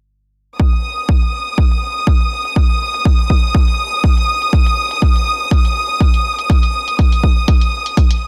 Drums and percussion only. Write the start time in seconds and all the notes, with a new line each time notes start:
0.60 kick, closed hi-hat
0.73 closed hi-hat
0.98 closed hi-hat
1.09 kick
1.22 closed hi-hat
1.58 kick
1.71 closed hi-hat
2.07 kick, closed hi-hat
2.20 closed hi-hat
2.45 closed hi-hat
2.56 kick, closed hi-hat
2.70 closed hi-hat
2.94 closed hi-hat
3.05 kick, closed hi-hat
3.19 closed hi-hat
3.30 kick
3.55 kick, closed hi-hat
3.68 closed hi-hat
4.04 kick, closed hi-hat
4.17 closed hi-hat
4.42 closed hi-hat
4.53 kick, closed hi-hat
4.66 closed hi-hat
4.91 closed hi-hat
5.02 kick, closed hi-hat
5.16 closed hi-hat
5.51 kick, closed hi-hat
5.65 closed hi-hat
6.01 kick, closed hi-hat
6.14 closed hi-hat
6.39 closed hi-hat
6.50 kick, closed hi-hat
6.63 closed hi-hat
6.88 closed hi-hat
6.99 kick, closed hi-hat
7.12 closed hi-hat
7.24 kick
7.48 kick, closed hi-hat
7.61 closed hi-hat
7.86 closed hi-hat
7.97 kick, closed hi-hat
8.11 closed hi-hat